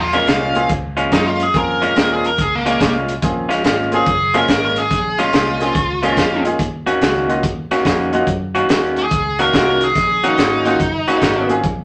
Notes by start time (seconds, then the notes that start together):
Already playing: A#1
0.01 F4
0.13 A#2 G#3 C#4 F4 A#4, closed hi-hat
0.27 C2 A#2 G#3 C#4 F4 F5, snare, closed hi-hat
0.54 A#3 C4 C#4 F4 G#4, closed hi-hat
0.69 C#2, kick, closed hi-hat
0.97 A#2 G#3 C#4 F4, closed hi-hat
1.12 F#2 A#2 G#3 C#4 D#4 F4, kick, snare, closed hi-hat
1.27 F4
1.40 G#4, closed hi-hat
1.54 F2 A#3 C4 C#4 F4 G#4 A#4, kick, closed hi-hat
1.82 A#2 G#3 C#4 F4, closed hi-hat
1.95 D#2 A#2 G#3 A#3 C4 C#4 F4 A#4, snare, closed hi-hat
2.13 G#4
2.24 A#4, closed hi-hat
2.38 C#2 G#4, kick, closed hi-hat
2.55 A#3
2.66 A#2 G#3 C#4 F4, closed hi-hat
2.80 C2 A#2 G#3 C#4 F4, kick, snare, closed hi-hat
3.08 closed hi-hat
3.22 A#1 A#3 C4 C#4 F4 G#4, kick, closed hi-hat
3.49 A#2 G#3 C#4 F4, snare, closed hi-hat
3.64 G#1 A#2 G#3 C#4 F4, snare, closed hi-hat
3.92 A#3 C4 C#4 F4 G#4, closed hi-hat
3.96 G#4
4.06 F#1, kick, closed hi-hat
4.34 A#2 G#3 A#3 C4 C#4 F4 G#4 A#4, closed hi-hat
4.48 G#1 A#2 G#3 C#4 F4, kick, snare, closed hi-hat
4.65 A#4
4.76 G#4, closed hi-hat
4.91 A#1, kick, snare, closed hi-hat
5.19 A#2 G#3 C#4 F4, closed hi-hat
5.33 C2 A#2 G#3 C#4 F4, snare, closed hi-hat
5.60 A#3 C4 C#4 F4 G#4, snare, closed hi-hat
5.75 C#2, kick, closed hi-hat
6.02 A#2 G#3 A#3 C4 C#4 F4 G#4, closed hi-hat
6.17 F2 A#2 G#3 C#4 F4, kick, snare, closed hi-hat
6.45 A#3 C#4 D#4 F4 G#4, closed hi-hat
6.59 D#2, kick, closed hi-hat
6.86 D#3 A#3 C#4 F#4, closed hi-hat
7.01 C#2 D#3 A#3 C#4 F#4, snare, closed hi-hat
7.28 A#3 C#4 D#4 F4 F#4, closed hi-hat
7.43 D#2, kick, closed hi-hat
7.71 D#3 A#3 C#4 F#4, muted fingered electric bass stroke, snare, closed hi-hat
7.85 F2 D#3 A#3 C#4 F#4, kick, snare, closed hi-hat
8.12 A#3 C#4 D#4 F4 F#4, closed hi-hat
8.27 F#2, kick, closed hi-hat
8.55 D#3 A#3 C#4 F#4, closed hi-hat
8.69 D#2 D#3 A#3 C#4 F#4, snare, closed hi-hat
8.96 G#4, closed hi-hat
9.11 C#2, kick, closed hi-hat
9.39 D#3 A#3 C#4 F#4 A#4, closed hi-hat
9.52 C2 D#3 A#3 C#4 D#4 F4 F#4, kick, snare, closed hi-hat
9.70 A#4
9.81 G#4, closed hi-hat
9.95 A#1, kick, snare, closed hi-hat
10.24 D#3 A#3 C#4 D#4 F#4, closed hi-hat
10.38 G#1 D#3 A#3 C#4 F#4, snare, closed hi-hat
10.64 A#3 C#4 D#4 F4 F#4, snare, closed hi-hat
10.80 F#1, kick, closed hi-hat
11.08 D#3 A#3 C#4 F#4, muted fingered electric bass stroke, snare, closed hi-hat
11.22 G#1 D#3 A#3 C#4 F#4, kick, snare, closed hi-hat
11.48 A#3 C4 C#4 F4 G#4, closed hi-hat
11.63 A#1, kick, closed hi-hat